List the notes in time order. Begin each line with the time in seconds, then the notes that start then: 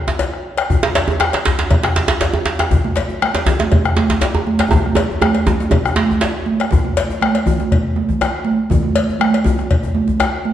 0.08 djembe slap, djembe bass
0.19 bombo rim, cowbell, djembe slap, djembe tone
0.33 bombo rim
0.57 bombo rim, cowbell
0.70 bombo low, djembe tone, djembe bass
0.83 djembe slap
0.95 cowbell, djembe slap
1.08 djembe slap, djembe tone
1.10 djembe tone
1.20 bombo rim, djembe slap
1.33 cowbell, djembe slap
1.45 djembe slap, djembe tone, djembe bass
1.59 djembe slap
1.71 bombo low, cowbell, djembe tone
1.83 bombo rim, djembe slap, djembe tone
1.96 djembe slap
2.08 djembe slap, djembe bass
2.21 bombo rim, cowbell, djembe slap, djembe tone
2.33 bombo rim, djembe tone
2.46 djembe slap
2.59 bombo rim, djembe slap
2.71 bombo low, djembe tone, djembe bass, low conga
2.84 djembe slap, high conga
2.96 cowbell, djembe slap, high conga
3.09 djembe slap, djembe tone, high conga
3.22 bombo rim, high conga
3.35 cowbell, djembe slap
3.46 djembe slap, djembe tone, djembe bass, low conga
3.59 djembe slap, high conga
3.72 bombo low, cowbell, djembe tone
3.84 bombo rim, djembe tone
3.96 djembe slap, high conga
4.09 djembe slap, djembe bass, low conga
4.21 bombo rim, cowbell, djembe slap, djembe tone
4.34 bombo rim, djembe tone
4.47 high conga
4.59 bombo rim, cowbell, djembe slap
4.71 bombo rim, bombo low, djembe tone, high conga, low conga, djembe bass
4.85 bombo rim, high conga
4.95 cowbell, djembe slap, djembe tone
5.10 djembe tone
5.21 bombo rim, high conga, djembe tone
5.35 cowbell
5.47 djembe slap, djembe tone, low conga, djembe bass
5.60 djembe slap, high conga
5.71 bombo low, cowbell, djembe tone, high conga
5.85 bombo rim, djembe tone
5.96 bombo rim, djembe slap, high conga
6.10 djembe slap, low conga, djembe bass
6.21 cowbell, djembe slap, djembe tone
6.34 high conga
6.46 djembe slap, high conga
6.60 bombo rim, cowbell
6.71 bombo low, djembe tone, low conga, djembe bass
6.84 high conga
6.97 cowbell, djembe slap
7.10 djembe tone
7.21 bombo rim, high conga
7.35 cowbell, djembe slap, high conga
7.46 djembe tone, low conga, djembe bass
7.59 bombo rim, djembe slap, high conga
7.71 bombo low, cowbell, djembe slap
7.96 high conga
8.09 djembe slap, low conga, djembe bass
8.21 bombo rim, cowbell, djembe slap, high conga, djembe tone
8.34 djembe slap
8.45 high conga
8.58 high conga
8.70 bombo low, djembe tone, low conga, djembe bass
8.83 high conga
8.96 cowbell
9.09 djembe tone
9.20 bombo rim, high conga
9.33 cowbell, djembe slap, high conga
9.44 djembe tone, low conga, djembe bass
9.58 bombo rim, djembe slap, high conga
9.70 bombo low, cowbell, djembe slap
9.83 djembe tone
9.95 high conga
10.08 djembe slap, low conga, djembe bass
10.20 bombo rim, cowbell, djembe slap, djembe tone
10.34 djembe slap
10.45 high conga